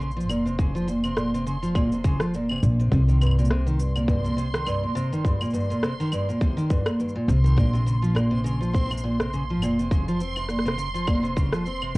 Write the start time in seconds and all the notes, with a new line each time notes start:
Already playing: A#1 C6
0.01 shaker
0.11 shaker
0.16 F3, shaker
0.29 F1 A#2, claves, shaker
0.45 C3, shaker
0.59 C#3, kick, shaker
0.75 F3, shaker
0.88 A#2, shaker
1.04 C3, claves, shaker
1.16 A#2, cross-stick, shaker
1.34 C3, shaker
1.47 C#3, shaker
1.63 F3, shaker
1.75 A#2, kick, claves, shaker
1.92 C3, shaker
2.04 C#3, kick, shaker
2.20 F3, cross-stick, shaker
2.34 A#2, shaker
2.49 C3, claves
2.52 claves
2.56 claves
2.58 claves
2.60 A#1 A#2, claves, shaker
2.80 C3, shaker
2.92 C2 C3, kick, shaker
3.08 D#3, shaker
3.22 G2, claves, shaker
3.27 claves
3.31 claves
3.39 A#2, shaker
3.45 shaker
3.51 C3, cross-stick
3.67 D#3, shaker
3.79 G2, shaker
3.96 A#2, claves, shaker
4.08 G2, kick, shaker
4.24 A#2, shaker
4.37 C3, shaker
4.54 D#3, cross-stick, shaker
4.67 G2, claves, shaker
4.83 A#2
4.95 G1 C3, shaker
5.12 D#3, shaker
5.25 G2, kick, shaker
5.41 A#2, claves, shaker
5.45 shaker
5.50 G2, shaker
5.54 shaker
5.60 shaker
5.70 A#2, shaker
5.83 C3, cross-stick, shaker
6.00 D#3, shaker
6.12 G2, claves, shaker
6.29 A#2, shaker
6.41 C3, kick, shaker
6.57 D#3, shaker
6.70 G2, kick, shaker
6.86 A#2, cross-stick, claves, shaker
7.00 G2, shaker
7.09 shaker
7.16 A#2
7.28 C2 C3, shaker
7.44 D#3, shaker
7.57 A#1 A#2, kick, shaker
7.73 C3, shaker
7.86 C#3, shaker
8.02 F3, shaker
8.15 A#2, cross-stick, claves, shaker
8.31 C3
8.44 C#3, shaker
8.61 F3, shaker
8.73 C4, kick, shaker
8.90 C3, claves, shaker
8.98 shaker
9.04 A#2
9.20 C3, cross-stick, shaker
9.34 C#3, shaker
9.50 F3
9.62 F1 A#2, claves, shaker
9.79 C3, shaker
9.91 C#3, kick, shaker
10.08 F3, shaker
10.20 C4, shaker
10.36 C3, claves, shaker
10.49 A#2, cross-stick, shaker
10.59 cross-stick
10.65 C3, cross-stick, shaker
10.78 C#3, shaker
10.94 F3, shaker
11.07 A#2, kick, claves, shaker
11.23 C3, shaker
11.36 C#3, kick, shaker
11.53 F3, cross-stick, shaker
11.66 C4, shaker
11.82 C3, claves